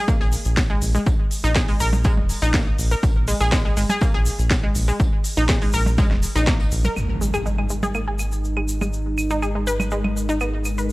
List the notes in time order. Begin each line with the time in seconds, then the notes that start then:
0.08 A#3, kick, tambourine, shaker
0.20 A#1 G#4, snare
0.32 open hi-hat, tambourine, shaker
0.45 A#1, closed hi-hat, shaker
0.57 kick, snare, tambourine, shaker
0.70 G#3
0.82 A#1, open hi-hat, tambourine, shaker
0.95 G#3, shaker
1.06 A#1, kick, tambourine, shaker
1.31 open hi-hat, tambourine, shaker
1.44 A#1 D#4, shaker
1.55 G#4, kick, snare, tambourine, shaker
1.68 G#3, open hi-hat
1.80 A#1 A#4, open hi-hat, tambourine, shaker
1.93 percussion blips, shaker
2.04 G#3, kick, tambourine, shaker
2.17 E1, percussion blips
2.29 open hi-hat, tambourine, shaker
2.42 A#1 D#4, closed hi-hat, shaker
2.54 A#3, kick, snare, tambourine, shaker
2.79 A#1, open hi-hat, tambourine, shaker
2.91 A#4, shaker
3.03 A#1, kick, tambourine, shaker
3.27 G#3, open hi-hat, tambourine, shaker
3.40 A#1 G#4, shaker
3.52 G#3, kick, snare, tambourine, shaker
3.65 G#3, snare
3.77 G#1 G#3, open hi-hat, tambourine, shaker
3.89 G#4, percussion blips, shaker
4.01 A#3, kick, tambourine, shaker
4.14 A#1 G#4, snare
4.26 open hi-hat, tambourine, shaker
4.39 A#1, closed hi-hat, shaker
4.50 kick, snare, tambourine, shaker
4.63 G#3
4.75 A#1, open hi-hat, tambourine, shaker
4.88 G#3, shaker
5.00 A#1, kick, tambourine, shaker
5.24 open hi-hat, tambourine, shaker
5.37 A#1 D#4, shaker
5.49 G#4, kick, snare, tambourine, shaker
5.62 G#3, open hi-hat
5.73 A#1 A#4, open hi-hat, tambourine, shaker
5.86 percussion blips, shaker
5.98 G#3, kick, snare, tambourine, shaker
6.11 E1, snare, percussion blips
6.23 open hi-hat, tambourine, shaker
6.35 A#1 D#4, snare, tambourine, shaker
6.47 A#3, kick, snare, shaker
6.60 tambourine
6.72 A#1, open hi-hat, tambourine, shaker
6.84 A#4, percussion blips, shaker
6.96 G#1 G#3 D#4 A#4, impact, claves, shaker
7.21 G#3, shaker
7.34 G#4, claves, shaker
7.46 G#3, shaker
7.58 G#3, claves
7.70 G#3, shaker
7.83 G#4, percussion blips, shaker
7.95 A#3, claves, shaker
8.08 G#4
8.19 claves, shaker
8.32 shaker
8.45 shaker
8.57 G#3, claves
8.68 shaker
8.81 G#3, percussion blips, claves, shaker
8.93 shaker
9.18 claves, shaker
9.30 D#4, shaker
9.42 G#4, claves, shaker
9.55 G#3
9.67 B4, shaker
9.80 percussion blips, claves, shaker
9.91 G#3, shaker
10.04 percussion blips, claves
10.17 shaker
10.29 D#4, shaker
10.40 B3, claves, shaker
10.65 claves, shaker
10.78 B4, shaker